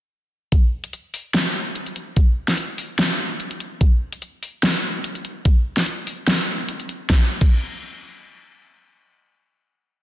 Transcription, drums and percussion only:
0.52 kick, closed hi-hat
0.84 closed hi-hat
0.93 closed hi-hat
1.14 open hi-hat
1.34 snare, closed hi-hat
1.75 closed hi-hat
1.86 closed hi-hat
1.96 closed hi-hat
2.16 kick, closed hi-hat
2.48 snare, closed hi-hat
2.58 closed hi-hat
2.78 open hi-hat
2.99 snare, closed hi-hat
3.40 closed hi-hat
3.51 closed hi-hat
3.60 closed hi-hat
3.81 kick, closed hi-hat
4.12 closed hi-hat
4.22 closed hi-hat
4.43 open hi-hat
4.63 snare, closed hi-hat
5.04 closed hi-hat
5.15 closed hi-hat
5.25 closed hi-hat
5.45 kick, closed hi-hat
5.77 snare, closed hi-hat
5.86 closed hi-hat
6.07 open hi-hat
6.27 snare, closed hi-hat
6.69 closed hi-hat
6.80 closed hi-hat
6.89 closed hi-hat
7.10 kick, snare
7.41 kick, crash

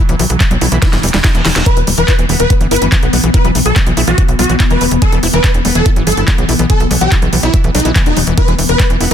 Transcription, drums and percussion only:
0.09 closed hi-hat
0.19 open hi-hat
0.30 closed hi-hat
0.40 kick, clap, closed hi-hat
0.51 closed hi-hat
0.61 open hi-hat
0.72 closed hi-hat
0.82 kick, snare, closed hi-hat
0.93 snare, closed hi-hat
1.03 open hi-hat
1.09 closed hi-hat
1.14 snare, closed hi-hat
1.24 kick, snare, clap, closed hi-hat
1.35 closed hi-hat
1.45 snare, open hi-hat
1.56 snare, closed hi-hat
1.66 kick, closed hi-hat
1.77 closed hi-hat
1.87 open hi-hat
1.98 closed hi-hat
2.08 kick, clap, closed hi-hat
2.19 closed hi-hat
2.29 open hi-hat
2.40 closed hi-hat
2.50 kick, closed hi-hat
2.61 closed hi-hat
2.71 open hi-hat
2.76 closed hi-hat
2.82 closed hi-hat
2.92 kick, clap, closed hi-hat
3.03 closed hi-hat
3.13 open hi-hat
3.24 closed hi-hat
3.34 kick, closed hi-hat
3.45 closed hi-hat
3.55 open hi-hat
3.66 closed hi-hat
3.76 kick, clap, closed hi-hat
3.87 closed hi-hat
3.97 open hi-hat
4.08 closed hi-hat
4.18 kick, closed hi-hat
4.29 closed hi-hat
4.39 open hi-hat
4.44 closed hi-hat
4.49 closed hi-hat
4.60 kick, clap, closed hi-hat
4.70 closed hi-hat
4.81 open hi-hat
4.91 closed hi-hat
5.02 kick, closed hi-hat
5.12 closed hi-hat
5.23 open hi-hat
5.33 closed hi-hat
5.44 kick, clap, closed hi-hat
5.54 closed hi-hat
5.65 open hi-hat
5.75 closed hi-hat
5.86 kick, closed hi-hat
5.96 closed hi-hat
6.07 open hi-hat
6.12 closed hi-hat
6.17 closed hi-hat
6.28 kick, clap, closed hi-hat
6.38 closed hi-hat
6.49 open hi-hat
6.59 closed hi-hat
6.70 kick, closed hi-hat
6.80 closed hi-hat
6.91 open hi-hat
7.01 closed hi-hat
7.12 kick, clap, closed hi-hat
7.22 closed hi-hat
7.33 open hi-hat
7.43 closed hi-hat
7.54 kick, closed hi-hat
7.64 closed hi-hat
7.75 open hi-hat
7.80 closed hi-hat
7.85 closed hi-hat
7.96 kick, clap, closed hi-hat
8.06 closed hi-hat
8.17 open hi-hat
8.27 closed hi-hat
8.38 kick, closed hi-hat
8.48 closed hi-hat
8.59 open hi-hat
8.69 closed hi-hat
8.80 kick, clap, closed hi-hat
8.90 closed hi-hat
9.01 open hi-hat

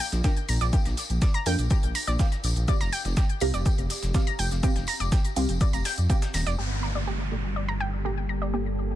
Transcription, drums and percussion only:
0.00 snare, shaker
0.12 snare, closed hi-hat, tambourine
0.24 kick, snare, closed hi-hat, tambourine, shaker
0.37 closed hi-hat
0.49 open hi-hat, tambourine, shaker
0.61 snare, closed hi-hat, tambourine
0.73 kick, closed hi-hat, tambourine, shaker
0.85 snare, closed hi-hat, tambourine
0.97 snare, open hi-hat, tambourine, shaker
1.10 closed hi-hat, tambourine
1.22 kick, snare, closed hi-hat, tambourine, shaker
1.34 closed hi-hat
1.46 open hi-hat, tambourine, shaker
1.58 closed hi-hat, tambourine
1.70 kick, closed hi-hat, tambourine, shaker
1.83 closed hi-hat
1.95 open hi-hat, tambourine
2.07 closed hi-hat, tambourine
2.19 kick, snare, closed hi-hat, tambourine, shaker
2.32 snare, closed hi-hat
2.44 open hi-hat, tambourine, shaker
2.56 closed hi-hat, tambourine
2.68 kick, closed hi-hat, tambourine, shaker
2.80 snare, closed hi-hat, tambourine
2.93 open hi-hat, tambourine, shaker
3.04 snare, closed hi-hat, tambourine
3.17 kick, snare, closed hi-hat, tambourine, shaker
3.29 closed hi-hat
3.40 open hi-hat, tambourine, shaker
3.54 closed hi-hat, tambourine
3.65 kick, closed hi-hat, tambourine, shaker
3.78 closed hi-hat
3.90 snare, open hi-hat, tambourine, shaker
4.03 snare, closed hi-hat, tambourine
4.14 kick, snare, closed hi-hat, tambourine, shaker
4.27 closed hi-hat
4.39 open hi-hat, tambourine, shaker
4.51 snare, closed hi-hat, tambourine
4.63 kick, closed hi-hat, tambourine, shaker
4.76 snare, closed hi-hat, tambourine
4.87 snare, open hi-hat, tambourine, shaker
5.00 closed hi-hat, tambourine
5.12 kick, snare, closed hi-hat, tambourine, shaker
5.24 closed hi-hat, tambourine
5.36 open hi-hat, tambourine, shaker
5.49 closed hi-hat, tambourine
5.61 kick, closed hi-hat, tambourine, shaker
5.73 closed hi-hat, tambourine
5.85 snare, open hi-hat, tambourine, shaker
5.98 closed hi-hat, tambourine
6.10 kick, closed hi-hat, tambourine, shaker
6.22 snare, closed hi-hat, shaker
6.34 snare, open hi-hat, tambourine, shaker
6.47 snare, closed hi-hat, tambourine

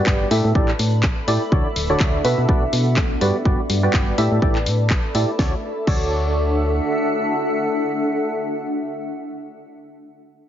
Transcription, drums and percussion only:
0.06 kick, clap
0.31 open hi-hat
0.55 kick
0.68 clap
0.79 open hi-hat
1.03 kick, clap
1.28 open hi-hat
1.52 kick
1.76 open hi-hat
2.00 kick, clap
2.25 open hi-hat
2.49 kick
2.73 open hi-hat
2.97 kick, clap
3.21 open hi-hat
3.45 kick
3.70 open hi-hat
3.93 kick, clap
4.18 open hi-hat
4.42 kick
4.55 clap
4.66 open hi-hat
4.90 kick, clap
5.15 open hi-hat
5.39 kick, snare
5.87 kick, crash

